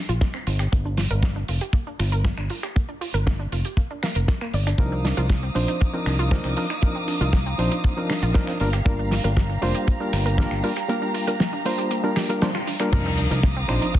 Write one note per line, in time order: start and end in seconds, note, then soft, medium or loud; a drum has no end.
0.09 0.18 A#1 medium
0.09 0.13 F4 loud
0.09 closed hi-hat medium
0.09 cabasa medium
0.21 0.28 A#3 medium
0.21 kick loud
0.21 snare loud
0.21 closed hi-hat medium
0.21 cabasa medium
0.34 0.40 C4 medium
0.34 finger snap medium
0.34 cabasa soft
0.47 0.66 G1 loud
0.47 0.53 F4 medium
0.47 open hi-hat medium
0.59 0.63 G4 medium
0.59 finger snap medium
0.59 closed hi-hat medium
0.59 cabasa medium
0.72 1.05 G1 loud
0.72 0.76 A#3 medium
0.72 kick loud
0.72 closed hi-hat medium
0.72 cabasa medium
0.85 0.89 D4 medium
0.85 cabasa soft
0.97 1.04 F4 medium
0.97 snare medium
0.97 open hi-hat loud
1.10 1.43 G1 medium
1.10 1.14 A#4 loud
1.10 closed hi-hat medium
1.10 cabasa medium
1.23 1.29 A#3 medium
1.23 kick loud
1.23 snare loud
1.23 closed hi-hat medium
1.23 cabasa medium
1.36 1.42 D4 medium
1.36 cabasa soft
1.48 1.58 F1 medium
1.48 1.55 F4 medium
1.48 open hi-hat loud
1.61 1.65 G4 medium
1.61 closed hi-hat medium
1.61 cabasa medium
1.73 1.78 A#3 medium
1.73 kick loud
1.73 closed hi-hat medium
1.73 cabasa medium
1.87 1.91 D4 medium
1.87 cabasa soft
1.99 2.32 G1 medium
1.99 2.06 F4 medium
1.99 finger snap medium
1.99 open hi-hat loud
2.12 2.16 A#4 loud
2.12 closed hi-hat medium
2.12 cabasa medium
2.25 2.31 A#3 medium
2.25 kick loud
2.25 snare loud
2.25 closed hi-hat medium
2.25 cabasa medium
2.38 2.47 G1 medium
2.38 2.44 D4 medium
2.38 finger snap medium
2.38 cabasa soft
2.50 2.57 F4 medium
2.50 open hi-hat medium
2.63 2.67 G4 medium
2.63 finger snap medium
2.63 closed hi-hat medium
2.63 cabasa medium
2.76 2.80 A#3 medium
2.76 kick loud
2.76 closed hi-hat medium
2.76 cabasa medium
2.88 2.92 D4 medium
2.88 cabasa soft
3.01 3.07 F4 medium
3.01 open hi-hat loud
3.14 3.47 G1 medium
3.14 3.18 A#4 loud
3.14 closed hi-hat medium
3.14 cabasa medium
3.27 3.33 A#3 medium
3.27 kick loud
3.27 snare loud
3.27 closed hi-hat medium
3.27 cabasa medium
3.39 3.46 D4 medium
3.39 cabasa soft
3.52 3.62 F1 medium
3.52 3.58 F4 medium
3.52 open hi-hat medium
3.65 3.69 G4 medium
3.65 closed hi-hat medium
3.65 cabasa medium
3.77 3.81 A#3 medium
3.77 kick loud
3.77 closed hi-hat medium
3.77 cabasa medium
3.90 3.94 D4 medium
3.90 cabasa soft
4.03 4.09 A#3 loud
4.03 finger snap medium
4.03 snare medium
4.03 open hi-hat loud
4.15 4.25 F1 medium
4.15 4.20 A#4 loud
4.15 closed hi-hat medium
4.15 cabasa medium
4.28 4.32 A#4 medium
4.28 kick loud
4.28 snare loud
4.28 closed hi-hat medium
4.28 cabasa medium
4.41 4.45 A#3 loud
4.41 finger snap medium
4.41 cabasa soft
4.53 4.72 G1 loud
4.53 4.63 D5 medium
4.53 open hi-hat loud
4.67 4.70 D4 medium
4.67 finger snap medium
4.67 closed hi-hat medium
4.67 cabasa medium
4.78 5.12 C2 medium
4.78 5.14 F3 medium
4.78 4.83 A#3 medium
4.78 5.14 C4 medium
4.78 5.14 D4 medium
4.78 5.14 D#4 medium
4.78 5.15 A#4 loud
4.78 12.88 F5 medium
4.78 8.56 A#5 medium
4.78 8.56 D6 medium
4.78 8.57 D#6 medium
4.78 kick loud
4.78 closed hi-hat medium
4.78 cabasa medium
4.92 4.96 C4 medium
4.92 cabasa soft
5.05 5.11 D4 medium
5.05 snare medium
5.05 open hi-hat medium
5.17 5.50 C2 medium
5.17 5.25 F3 medium
5.17 5.25 C4 medium
5.17 5.25 D4 medium
5.17 5.25 D#4 medium
5.17 5.21 F4 loud
5.17 5.25 A#4 medium
5.17 closed hi-hat medium
5.17 cabasa medium
5.30 5.36 A#3 medium
5.30 kick loud
5.30 snare loud
5.30 closed hi-hat medium
5.30 cabasa medium
5.43 5.49 C4 medium
5.43 cabasa soft
5.55 5.65 A#1 medium
5.55 5.90 F3 medium
5.55 5.90 C4 medium
5.55 5.62 D4 medium
5.55 5.91 D4 medium
5.55 5.91 D#4 medium
5.55 5.91 C5 medium
5.55 open hi-hat loud
5.67 5.72 D#4 medium
5.67 closed hi-hat medium
5.67 cabasa medium
5.81 5.85 A#3 medium
5.81 kick loud
5.81 closed hi-hat medium
5.81 cabasa medium
5.93 6.28 F3 medium
5.93 5.97 C4 medium
5.93 6.29 C4 medium
5.93 6.29 D4 medium
5.93 6.29 D#4 medium
5.93 6.29 A#4 medium
5.93 cabasa soft
6.06 6.39 C2 medium
6.06 6.13 D4 medium
6.06 finger snap medium
6.06 open hi-hat loud
6.19 6.23 F4 loud
6.19 closed hi-hat medium
6.19 cabasa medium
6.31 6.54 F3 medium
6.31 6.38 A#3 medium
6.31 6.54 C4 medium
6.31 6.54 D4 medium
6.31 6.54 D#4 medium
6.31 6.54 A#4 loud
6.31 kick loud
6.31 snare loud
6.31 closed hi-hat medium
6.31 cabasa medium
6.44 6.54 C2 medium
6.44 6.51 C4 medium
6.44 finger snap medium
6.44 cabasa soft
6.57 6.65 F3 medium
6.57 6.65 C4 medium
6.57 6.65 D4 medium
6.57 6.64 D4 medium
6.57 6.65 D#4 medium
6.57 6.65 A#4 medium
6.57 open hi-hat medium
6.70 6.74 D#4 medium
6.70 finger snap medium
6.70 closed hi-hat medium
6.70 cabasa medium
6.81 7.18 F3 medium
6.81 6.86 A#3 medium
6.81 7.18 C4 medium
6.81 7.18 D4 medium
6.81 7.18 D#4 medium
6.81 7.18 A#4 loud
6.81 kick loud
6.81 closed hi-hat medium
6.81 cabasa medium
6.95 6.99 C4 medium
6.95 cabasa soft
7.08 7.14 D4 medium
7.08 open hi-hat loud
7.20 7.53 C2 medium
7.20 7.28 F3 medium
7.20 7.28 C4 medium
7.20 7.28 D4 medium
7.20 7.28 D#4 medium
7.20 7.24 F4 loud
7.20 7.29 A#4 medium
7.20 closed hi-hat medium
7.20 cabasa medium
7.33 7.40 A#3 medium
7.33 kick loud
7.33 snare loud
7.33 closed hi-hat medium
7.33 cabasa medium
7.46 7.52 C4 medium
7.46 cabasa soft
7.58 7.68 A#1 medium
7.58 7.94 F3 medium
7.58 7.94 C4 medium
7.58 7.65 D4 medium
7.58 7.94 D4 medium
7.58 7.94 D#4 medium
7.58 7.94 C5 loud
7.58 open hi-hat medium
7.72 7.75 D#4 medium
7.72 closed hi-hat medium
7.72 cabasa medium
7.84 7.88 A#3 medium
7.84 kick loud
7.84 closed hi-hat medium
7.84 cabasa medium
7.97 8.32 F3 medium
7.97 8.32 C4 medium
7.97 8.01 C4 medium
7.97 8.32 D4 medium
7.97 8.32 D#4 medium
7.97 8.32 A#4 medium
7.97 cabasa soft
8.09 8.16 D4 medium
8.09 finger snap medium
8.09 snare medium
8.09 open hi-hat loud
8.22 8.32 A#1 medium
8.22 8.26 F4 loud
8.22 closed hi-hat medium
8.22 cabasa medium
8.34 8.57 F3 medium
8.34 8.41 A#3 medium
8.34 8.57 C4 medium
8.34 8.57 D4 medium
8.34 8.58 D#4 medium
8.34 8.58 A#4 loud
8.34 kick loud
8.34 snare loud
8.34 closed hi-hat medium
8.34 cabasa medium
8.47 8.54 C4 medium
8.47 finger snap medium
8.47 cabasa soft
8.60 8.79 G1 loud
8.60 8.68 G3 medium
8.60 8.68 A#3 medium
8.60 8.68 D4 medium
8.60 8.67 F4 medium
8.60 8.68 F4 medium
8.60 12.89 G4 medium
8.60 8.69 A#4 medium
8.60 12.89 A#5 medium
8.60 open hi-hat medium
8.73 8.77 G4 medium
8.73 finger snap medium
8.73 closed hi-hat medium
8.73 cabasa medium
8.85 9.19 G1 medium
8.85 9.21 G3 medium
8.85 9.21 A#3 medium
8.85 8.90 A#3 medium
8.85 9.21 D4 medium
8.85 9.21 F4 medium
8.85 9.21 A#4 loud
8.85 kick loud
8.85 closed hi-hat medium
8.85 cabasa medium
8.99 9.03 D4 medium
8.99 cabasa soft
9.11 9.18 F4 medium
9.11 snare medium
9.11 open hi-hat loud
9.24 9.57 G1 medium
9.24 9.32 G3 medium
9.24 9.32 A#3 medium
9.24 9.32 D4 medium
9.24 9.32 F4 medium
9.24 9.28 A#4 loud
9.24 9.32 A#4 medium
9.24 closed hi-hat medium
9.24 cabasa medium
9.37 9.43 A#3 medium
9.37 kick loud
9.37 snare loud
9.37 closed hi-hat medium
9.37 cabasa medium
9.50 9.56 D4 medium
9.50 cabasa soft
9.62 9.72 F1 medium
9.62 9.97 G3 medium
9.62 9.97 A#3 medium
9.62 9.97 D4 medium
9.62 9.68 F4 medium
9.62 9.97 F4 medium
9.62 9.98 C5 loud
9.62 open hi-hat loud
9.75 9.79 G4 medium
9.75 closed hi-hat medium
9.75 cabasa medium
9.87 9.91 A#3 medium
9.87 kick loud
9.87 closed hi-hat medium
9.87 cabasa medium
10.00 10.35 G3 medium
10.00 10.35 A#3 medium
10.00 10.04 D4 medium
10.00 10.35 D4 medium
10.00 10.36 F4 medium
10.00 10.36 A#4 medium
10.00 cabasa soft
10.13 10.46 G1 medium
10.13 10.19 F4 medium
10.13 finger snap medium
10.13 open hi-hat loud
10.26 10.29 A#4 loud
10.26 closed hi-hat medium
10.26 cabasa medium
10.38 10.61 G3 medium
10.38 10.61 A#3 medium
10.38 10.45 A#3 medium
10.38 10.61 D4 medium
10.38 10.61 F4 medium
10.38 10.61 A#4 loud
10.38 kick loud
10.38 snare loud
10.38 closed hi-hat medium
10.38 cabasa medium
10.51 10.60 G1 medium
10.51 10.57 D4 medium
10.51 finger snap medium
10.51 cabasa soft
10.63 10.71 G3 medium
10.63 10.71 A#3 medium
10.63 10.71 D4 medium
10.63 10.70 F4 medium
10.63 10.72 F4 medium
10.63 10.72 A#4 medium
10.63 open hi-hat medium
10.76 10.80 G4 medium
10.76 finger snap medium
10.76 closed hi-hat medium
10.76 cabasa medium
10.89 11.24 G3 medium
10.89 11.24 A#3 medium
10.89 10.93 A#3 medium
10.89 11.24 D4 medium
10.89 11.25 F4 medium
10.89 11.25 A#4 loud
10.89 closed hi-hat medium
10.89 cabasa medium
11.02 11.06 D4 medium
11.02 cabasa soft
11.14 11.21 F4 medium
11.14 open hi-hat medium
11.27 11.35 G3 medium
11.27 11.35 A#3 medium
11.27 11.35 D4 medium
11.27 11.35 F4 medium
11.27 11.31 A#4 loud
11.27 11.35 A#4 medium
11.27 closed hi-hat medium
11.27 cabasa medium
11.40 11.46 A#3 medium
11.40 snare loud
11.40 closed hi-hat medium
11.40 cabasa medium
11.53 11.59 D4 medium
11.53 cabasa soft
11.65 12.01 G3 medium
11.65 12.01 A#3 medium
11.65 12.01 D4 medium
11.65 11.72 F4 medium
11.65 12.01 F4 medium
11.65 12.01 C5 loud
11.65 open hi-hat loud
11.78 11.82 G4 medium
11.78 closed hi-hat medium
11.78 cabasa medium
11.91 11.95 A#3 medium
11.91 closed hi-hat medium
11.91 cabasa medium
12.03 12.26 G3 medium
12.03 12.27 A#3 medium
12.03 12.07 D4 medium
12.03 12.27 D4 medium
12.03 12.27 F4 medium
12.03 12.27 A#4 medium
12.03 cabasa soft
12.16 12.26 G4 loud
12.16 finger snap medium
12.16 snare medium
12.16 open hi-hat loud
12.29 12.40 G3 medium
12.29 12.40 A#3 medium
12.29 12.40 D4 medium
12.29 12.40 F4 medium
12.29 12.40 A#4 medium
12.29 12.33 D5 medium
12.29 closed hi-hat medium
12.29 cabasa medium
12.42 12.50 G3 medium
12.42 12.50 A#3 medium
12.42 12.51 D4 medium
12.42 12.50 D4 medium
12.42 12.50 F4 medium
12.42 12.50 C5 medium
12.42 snare loud
12.42 closed hi-hat medium
12.42 cabasa medium
12.54 12.58 F4 loud
12.54 finger snap medium
12.54 cabasa soft
12.67 12.74 D4 medium
12.67 open hi-hat loud
12.79 12.89 G3 medium
12.79 12.90 A#3 medium
12.79 12.90 D4 medium
12.79 12.90 F4 medium
12.79 12.86 G4 loud
12.79 12.90 A#4 loud
12.79 finger snap medium
12.79 closed hi-hat medium
12.79 cabasa medium
12.92 13.26 C2 loud
12.92 13.28 F3 medium
12.92 12.97 A#3 loud
12.92 13.28 C4 medium
12.92 13.28 D4 medium
12.92 13.28 D#4 medium
12.92 13.28 A#4 loud
12.92 13.99 F5 medium
12.92 13.99 A#5 medium
12.92 13.99 D6 medium
12.92 13.99 D#6 medium
12.92 kick loud
12.92 closed hi-hat medium
12.92 crash medium
12.92 sub drop medium
12.92 cabasa medium
13.06 13.12 C4 loud
13.06 cabasa soft
13.18 13.22 D4 medium
13.18 open hi-hat loud
13.18 cabasa medium
13.30 13.64 C2 medium
13.30 13.38 F3 medium
13.30 13.38 C4 medium
13.30 13.38 D4 medium
13.30 13.39 D#4 medium
13.30 13.37 D#4 medium
13.30 13.39 A#4 medium
13.30 closed hi-hat medium
13.30 cabasa soft
13.43 13.50 A#3 loud
13.43 kick loud
13.43 snare loud
13.43 closed hi-hat medium
13.43 cabasa medium
13.56 13.63 C4 loud
13.56 cabasa soft
13.68 13.79 A#1 medium
13.68 13.99 F3 medium
13.68 13.99 C4 medium
13.68 13.99 D4 medium
13.68 13.78 D4 medium
13.68 13.99 D#4 medium
13.68 13.99 C5 loud
13.68 finger snap medium
13.68 open hi-hat loud
13.68 cabasa medium
13.82 13.85 D#4 medium
13.82 closed hi-hat medium
13.82 cabasa soft
13.94 13.98 A#3 loud
13.94 kick loud
13.94 closed hi-hat medium
13.94 cabasa medium